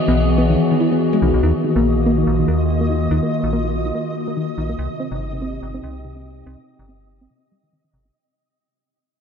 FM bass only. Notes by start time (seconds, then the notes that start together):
0.08 B1
1.22 B1
1.34 B1
1.43 D#2
1.76 A#1
2.27 A#1
2.48 D#2
3.11 D#2
3.44 A#1
4.58 A#1
4.79 C2
5.11 G1
5.63 G1
5.84 C2
6.46 C2
6.79 G1
7.94 G1